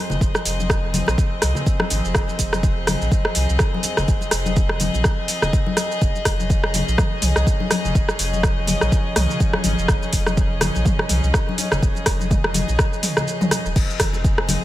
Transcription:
Already playing: string section F3 C4 G#4 D#5
0.10 sub bass F1, low conga, shaker
0.21 sub bass F1, kick, shaker
0.34 cross-stick, muted conga, shaker
0.45 sub bass F1, open hi-hat, shaker
0.60 high conga, shaker
0.70 kick, cross-stick, muted conga, shaker
0.94 open hi-hat, high conga, low conga, shaker
1.07 sub bass A#1, cross-stick, muted conga, shaker
1.18 kick, shaker
1.42 sub bass C2, cross-stick, open hi-hat, muted conga, shaker
1.55 low conga, shaker
1.66 kick, shaker
1.79 cross-stick, high conga
1.90 sub bass G#1, open hi-hat, muted conga, high conga, shaker
2.05 sub bass F1, shaker
2.15 sub bass F1, kick, cross-stick, shaker
2.28 muted conga, shaker
2.39 sub bass F1, kick, open hi-hat, shaker
2.53 cross-stick, high conga, shaker
2.63 kick, shaker
2.87 cross-stick, open hi-hat, high conga, low conga, shaker
3.01 sub bass A#1, muted conga, shaker
3.12 kick, high conga, shaker
3.25 cross-stick
3.35 sub bass C2, open hi-hat, muted conga, shaker
3.49 sub bass C2, shaker
3.59 kick, cross-stick, shaker
3.74 high conga
3.83 open hi-hat, muted conga, high conga, shaker
3.97 sub bass F1, cross-stick, low conga, shaker
4.08 sub bass F1, kick, shaker
4.21 muted conga, shaker
4.31 sub bass F1, cross-stick, open hi-hat, shaker
4.46 high conga, shaker
4.56 kick, shaker
4.69 cross-stick
4.80 open hi-hat, high conga, low conga, shaker
4.94 sub bass A#1, muted conga, shaker
5.04 kick, cross-stick, shaker
5.28 open hi-hat, muted conga, shaker
5.42 sub bass D#1, cross-stick, low conga, shaker
5.53 kick, shaker
5.67 high conga
5.77 cross-stick, open hi-hat, muted conga, high conga, shaker
5.91 shaker
6.01 sub bass F1, string section F3 C#4, kick, shaker
6.15 muted conga, shaker
6.25 sub bass F1, kick, cross-stick, open hi-hat, shaker
6.40 high conga, shaker
6.50 kick, shaker
6.64 cross-stick
6.74 open hi-hat, high conga, low conga, shaker
6.88 sub bass A#1, muted conga, shaker
6.98 kick, cross-stick, mid tom, high conga, shaker
7.22 sub bass C2, mid tom, open hi-hat, muted conga, shaker
7.36 sub bass C2, cross-stick, shaker
7.47 kick, shaker
7.60 high conga
7.71 cross-stick, open hi-hat, muted conga, high conga, shaker
7.84 sub bass F1, low conga, shaker
7.95 sub bass F1, kick, shaker
8.09 cross-stick, muted conga, shaker
8.19 sub bass F1, open hi-hat, shaker
8.33 high conga, shaker
8.43 kick, cross-stick, muted conga, shaker
8.67 open hi-hat, high conga, low conga, shaker
8.81 sub bass A#1, cross-stick, muted conga, shaker
8.92 kick, shaker
9.16 sub bass C2, cross-stick, mid tom, open hi-hat, muted conga, shaker
9.29 low conga, shaker
9.40 kick, shaker
9.53 cross-stick, high conga
9.64 sub bass G#1, open hi-hat, muted conga, high conga, shaker
9.78 sub bass F1, shaker
9.88 sub bass F1, kick, cross-stick, shaker
10.02 muted conga, shaker
10.13 sub bass F1, kick, open hi-hat, shaker
10.26 cross-stick, high conga, shaker
10.36 kick, muted conga, shaker
10.61 cross-stick, open hi-hat, high conga, low conga, shaker
10.75 sub bass A#1, muted conga, shaker
10.85 kick, mid tom, high conga, shaker
10.99 cross-stick
11.09 sub bass C2, mid tom, open hi-hat, muted conga, shaker
11.23 sub bass C2, shaker
11.34 kick, cross-stick, shaker
11.49 high conga
11.58 open hi-hat, muted conga, high conga, shaker
11.72 sub bass F1, cross-stick, low conga, shaker
11.83 sub bass F1, kick, shaker
11.95 muted conga, shaker
12.06 sub bass F1, kick, cross-stick, open hi-hat, shaker
12.20 high conga, shaker
12.30 kick, mid tom, muted conga, shaker
12.44 cross-stick
12.54 open hi-hat, high conga, low conga, shaker
12.68 sub bass A#1, muted conga, shaker
12.79 kick, cross-stick, shaker
12.93 shaker
13.03 mid tom, open hi-hat, muted conga, shaker
13.17 cross-stick, low conga, shaker
13.28 shaker
13.41 mid tom, high conga, shaker
13.51 cross-stick, open hi-hat, muted conga, high conga, shaker
13.65 sub bass D#1, shaker
13.75 sub bass F1, string section F3 C4 G#4 D#5, kick, crash, shaker
13.90 shaker
14.00 sub bass F1, kick, cross-stick, mid tom, open hi-hat, shaker
14.13 muted conga, high conga, shaker
14.24 kick, shaker
14.38 cross-stick
14.48 open hi-hat, muted conga, high conga, low conga, shaker

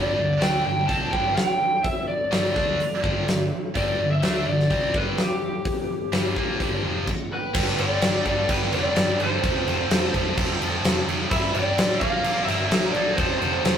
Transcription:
Already playing: picked electric bass G1, distorted electric guitar G2 D3 G3, lead electric guitar D5
0.16 picked electric bass G1, distorted electric guitar G2 D3
0.39 picked electric bass D2, distorted electric guitar D3 A3 D4, lead electric guitar G5, snare, open hi-hat
0.64 picked electric bass G1, distorted electric guitar G2 D3, lead electric guitar G5
0.87 picked electric bass C2, distorted electric guitar C3 G3 C4, lead electric guitar A5, kick, open hi-hat
1.12 picked electric bass G1, distorted electric guitar G2 D3 G3, lead electric guitar G5, kick
1.36 lead electric guitar G5, snare, open hi-hat
1.83 lead electric guitar E5, kick, open hi-hat
2.08 lead electric guitar D5
2.31 picked electric bass G1, distorted electric guitar G2 D3 G3, lead electric guitar D5, snare, open hi-hat
2.55 picked electric bass D2, distorted electric guitar D3 A3 D4, kick, snare
2.79 muted distorted electric guitar stroke, muted picked electric bass stroke, open hi-hat
3.03 picked electric bass G1, distorted electric guitar G2 D3 G3, kick
3.26 picked electric bass G1, distorted electric guitar G2 D3, snare, open hi-hat
3.75 picked electric bass G1, distorted electric guitar G2 D3 G3, lead electric guitar D5, kick, open hi-hat
3.98 picked electric bass G1, distorted electric guitar G2 D3
4.11 lead electric guitar E5
4.22 picked electric bass D2, distorted electric guitar D3 A3 D4, snare, open hi-hat
4.46 picked electric bass G1, distorted electric guitar G2 D3, lead electric guitar D5
4.60 snare
4.70 picked electric bass C2, distorted electric guitar C3 G3 C4, kick, open hi-hat
4.94 picked electric bass G1, distorted electric guitar G2 D3 G3, lead electric guitar B4, kick
5.18 lead electric guitar G4, snare, open hi-hat
5.65 kick, open hi-hat
6.12 picked electric bass G1, distorted electric guitar G2 D3 G3, snare, open hi-hat
6.36 picked electric bass A#1, distorted electric guitar A#2 F3 A#3, kick
6.59 picked electric bass G1, distorted electric guitar G2 D3 G3, kick, open hi-hat
6.83 picked electric bass F1, distorted electric guitar F2 C3 F3
7.07 kick, crash
7.32 lead electric guitar G4 B4
7.54 picked electric bass G1, distorted electric guitar G2 D3 G3, kick, crash
7.78 picked electric bass G1, distorted electric guitar G2 D3 G3, lead electric guitar G4 D5, crash
8.01 picked electric bass G1, distorted electric guitar G2 D3 G3, snare, crash
8.24 picked electric bass G1, distorted electric guitar G2 D3 G3, lead electric guitar A4 D5, kick, crash
8.48 picked electric bass G1, distorted electric guitar G2 D3 G3, lead electric guitar G4 B4, kick, crash
8.72 picked electric bass F1, distorted electric guitar G2 D3 G3, lead electric guitar G4 D5, crash
8.96 picked electric bass G1, distorted electric guitar G2 D3 G3, snare, crash
9.19 picked electric bass G1, distorted electric guitar G2 D3 G3, lead electric guitar A4 C5, crash
9.42 picked electric bass F1, distorted electric guitar F2 C3 F3, kick, crash
9.66 picked electric bass F1, distorted electric guitar F2 C3 F3, crash
9.89 picked electric bass F1, distorted electric guitar F2 C3 F3, snare, crash
10.14 picked electric bass F1, distorted electric guitar F2 C3 F3, kick, crash
10.37 picked electric bass F1, distorted electric guitar F2 C3 F3, kick, crash
10.61 distorted electric guitar F2 C3 F3, picked electric bass F2, crash
10.83 picked electric bass F1, distorted electric guitar F2 C3 F3, snare, crash
11.07 picked electric bass F1, distorted electric guitar F2 C3 F3, crash
11.30 picked electric bass G1, distorted electric guitar G2 D3 G3, lead electric guitar B4 E5, kick, crash
11.53 picked electric bass G1, distorted electric guitar G2 D3 G3, lead electric guitar G4 D5, crash
11.77 picked electric bass A1, distorted electric guitar G2 D3 G3, snare, crash
11.98 picked electric bass A#1, distorted electric guitar A#2 F3, lead electric guitar D5 F5, kick, crash
12.02 distorted electric guitar A#3
12.24 picked electric bass A#1, distorted electric guitar A#2 F3 A#3, crash
12.43 picked electric bass G1, distorted electric guitar A#2, lead electric guitar A#4 E5
12.48 distorted electric guitar F3 A#3, snare, crash
12.71 picked electric bass A#1, distorted electric guitar A#2 F3 A#3, snare, crash
12.91 picked electric bass A#1, distorted electric guitar A#2, lead electric guitar A4 D5, crash
12.95 distorted electric guitar F3 A#3
13.14 lead electric guitar A4 C5
13.18 picked electric bass F1, distorted electric guitar F2 C3 F3, kick, crash
13.39 picked electric bass F1, distorted electric guitar F2 C3 F3, lead electric guitar A4 C5, crash
13.64 picked electric bass F1, distorted electric guitar F2 C3 F3, snare, crash

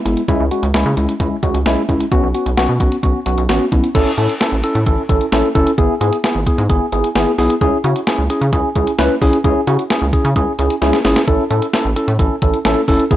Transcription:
0.06 analog synth bass G#1, tine electric piano G#3 B3 E4, closed hi-hat
0.17 closed hi-hat
0.28 analog synth bass C#2, tine electric piano G#3 C#4 E4, kick, closed hi-hat
0.40 analog synth bass C#2
0.51 tine electric piano G#3 C#4 F#4, closed hi-hat
0.63 analog synth bass C#2, closed hi-hat
0.74 analog synth bass C#2, tine electric piano G#3 C#4 E4, snare, closed hi-hat
0.86 analog synth bass C#3
0.97 analog synth bass C#2, tine electric piano G#3 C#4 E4, closed hi-hat
1.09 closed hi-hat
1.20 analog synth bass C#2, tine electric piano G#3 C#4 E4, kick, closed hi-hat
1.43 analog synth bass C#2, tine electric piano G#3 C#4 F#4, kick, closed hi-hat
1.54 analog synth bass C#2, closed hi-hat
1.66 analog synth bass B1, tine electric piano G#3 C#4 E4, snare, closed hi-hat
1.89 analog synth bass C#2, tine electric piano G#3 C#4 E4, kick, closed hi-hat
2.00 closed hi-hat
2.12 analog synth bass B1, tine electric piano B3 C#4 F#4, kick, closed hi-hat
2.23 analog synth bass B1
2.34 tine electric piano B3 C#4 F#4, closed hi-hat
2.46 analog synth bass B1, closed hi-hat
2.57 analog synth bass B1, tine electric piano B3 C#4 F#4, snare, closed hi-hat
2.69 analog synth bass B2
2.80 analog synth bass B1, tine electric piano B3 C#4 F#4, kick, closed hi-hat
2.92 closed hi-hat
3.03 analog synth bass B1, tine electric piano B3 C#4 F#4, kick, closed hi-hat
3.26 analog synth bass B1, tine electric piano B3 C#4 F#4, closed hi-hat
3.38 analog synth bass B1, closed hi-hat
3.49 analog synth bass A1, tine electric piano B3 C#4 F#4, snare, closed hi-hat
3.72 analog synth bass B1, tine electric piano B3 C#4 E4, kick, closed hi-hat
3.84 closed hi-hat
3.95 analog synth bass A1, tine electric piano C#4 E4 A4, kick, closed hi-hat, crash
4.18 analog synth bass A2, tine electric piano C#4 E4 A4, closed hi-hat
4.29 closed hi-hat
4.41 tine electric piano C#4 E4 A4, snare, closed hi-hat
4.52 analog synth bass A1
4.64 tine electric piano C#4 E4 A4, closed hi-hat
4.75 analog synth bass A2, closed hi-hat
4.86 analog synth bass A1, tine electric piano C#4 E4 A4, kick, closed hi-hat
5.09 analog synth bass A1, tine electric piano C#4 E4 A4, kick, closed hi-hat
5.21 closed hi-hat
5.32 analog synth bass A1, tine electric piano C#4 E4 A4, snare, closed hi-hat
5.55 analog synth bass F#1, tine electric piano C#4 E4 A4, kick, closed hi-hat
5.67 closed hi-hat
5.78 analog synth bass G#1, tine electric piano B3 E4 G#4, kick, closed hi-hat
6.01 analog synth bass G#2, tine electric piano B3 E4 G#4, closed hi-hat
6.13 closed hi-hat
6.24 tine electric piano B3 E4 G#4, snare, closed hi-hat
6.35 analog synth bass G#1
6.47 tine electric piano B3 E4 G#4, kick, closed hi-hat
6.58 analog synth bass G#2, closed hi-hat
6.70 analog synth bass G#1, tine electric piano B3 E4 G#4, kick, closed hi-hat
6.92 analog synth bass G#1, tine electric piano B3 E4 G#4, closed hi-hat
7.04 closed hi-hat
7.15 analog synth bass G#1, tine electric piano B3 E4 G#4, snare, closed hi-hat
7.38 analog synth bass B1, tine electric piano B3 E4 G#4, open hi-hat
7.50 closed hi-hat
7.61 analog synth bass C#2, tine electric piano C#4 E4 G#4, kick, closed hi-hat
7.84 analog synth bass C#3, tine electric piano C#4 E4 F#4, closed hi-hat
7.96 closed hi-hat
8.07 tine electric piano C#4 E4 G#4, snare, closed hi-hat
8.18 analog synth bass C#2
8.30 tine electric piano C#4 E4 G#4, closed hi-hat
8.41 analog synth bass C#3, closed hi-hat
8.53 analog synth bass C#2, tine electric piano C#4 E4 G#4, kick, closed hi-hat
8.75 analog synth bass C#2, tine electric piano C#4 E4 G#4, kick, closed hi-hat
8.87 closed hi-hat
8.99 analog synth bass C#2, tine electric piano C#4 E4 B4, snare, closed hi-hat
9.22 analog synth bass B1, tine electric piano C#4 E4 G#4, kick, open hi-hat
9.33 closed hi-hat
9.44 analog synth bass C#2, tine electric piano C#4 E4 G#4, kick, closed hi-hat
9.67 analog synth bass C#3, tine electric piano C#4 E4 F#4, closed hi-hat
9.79 closed hi-hat
9.90 tine electric piano C#4 E4 G#4, snare, closed hi-hat
10.02 analog synth bass C#2
10.13 tine electric piano C#4 E4 G#4, kick, closed hi-hat
10.25 analog synth bass C#3, closed hi-hat
10.36 analog synth bass C#2, tine electric piano C#4 E4 G#4, kick, closed hi-hat
10.59 analog synth bass C#2, tine electric piano C#4 E4 G#4, closed hi-hat
10.70 closed hi-hat
10.82 analog synth bass C#2, tine electric piano C#4 E4 G#4, snare, closed hi-hat
10.93 snare
11.05 analog synth bass G#1, tine electric piano C#4 E4 G#4, snare, open hi-hat
11.16 snare, closed hi-hat
11.28 analog synth bass A1, tine electric piano C#4 E4 A4, kick, closed hi-hat
11.50 analog synth bass A2, tine electric piano C#4 E4 A4, closed hi-hat
11.62 closed hi-hat
11.73 tine electric piano C#4 E4 A4, snare, closed hi-hat
11.85 analog synth bass A1
11.96 tine electric piano C#4 E4 A4, closed hi-hat
12.08 analog synth bass A2, closed hi-hat
12.19 analog synth bass A1, tine electric piano C#4 E4 A4, kick, closed hi-hat
12.42 analog synth bass A1, tine electric piano C#4 E4 A4, kick, closed hi-hat
12.54 closed hi-hat
12.65 analog synth bass A1, tine electric piano C#4 E4 A4, snare, closed hi-hat
12.88 analog synth bass F#1, tine electric piano C#4 E4 A4, kick, open hi-hat
13.00 closed hi-hat
13.11 analog synth bass G#1, tine electric piano B3 E4 G#4, kick, closed hi-hat

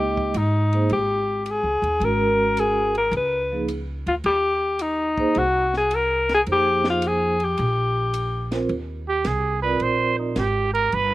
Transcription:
Already playing: upright bass C#2, vibraphone G#3 A#3 D#4 D#5, alto saxophone G4
0.17 kick
0.34 upright bass G#2, alto saxophone D#4, hi-hat pedal, ride
0.73 vibraphone A#3 D#4 G#4 C5, ride
0.90 upright bass G#1, alto saxophone G4, ride
1.45 alto saxophone G4, hi-hat pedal, ride
1.50 alto saxophone G#4
1.63 upright bass C#2
1.82 upright bass D#2, ride
2.00 upright bass G#1, vibraphone G#3 C#4 F#4 A#4, ride
2.05 alto saxophone A#4
2.57 alto saxophone G#4, hi-hat pedal, ride
2.95 alto saxophone A#4, ride
3.11 upright bass C#2, ride
3.16 alto saxophone B4
3.52 vibraphone F3 A#3 D#4 G#4
3.68 hi-hat pedal, ride
4.06 upright bass D2, alto saxophone F4, ride
4.24 upright bass D#2, alto saxophone G4, ride
4.79 alto saxophone D#4, hi-hat pedal, ride
5.18 vibraphone A#3 D#4 G#4 C5, kick
5.35 upright bass C2, alto saxophone F#4, ride
5.74 alto saxophone G#4, snare
5.91 hi-hat pedal, ride
5.95 alto saxophone A#4
6.29 snare, ride
6.34 alto saxophone G#4
6.46 upright bass F2, vibraphone A#3 D#4 G#4 C5, ride
6.52 alto saxophone G4
6.84 snare
6.90 alto saxophone F4
7.02 hi-hat pedal, ride
7.07 alto saxophone G#4
7.40 alto saxophone G4, ride
7.57 upright bass A#1, ride
8.14 hi-hat pedal, ride
8.51 vibraphone C4 F4 A#4 C5, snare, ride
8.69 upright bass D#2, ride
9.09 trumpet G4
9.25 upright bass C2, trumpet G#4, snare, hi-hat pedal, ride
9.62 vibraphone C4 F4 A#4 D5, trumpet B4
9.80 upright bass A#1, trumpet C5, ride
10.19 trumpet D#4
10.36 upright bass G#1, trumpet G4, snare, hi-hat pedal, ride
10.74 trumpet A#4, ride
10.92 upright bass G1, trumpet B4, ride

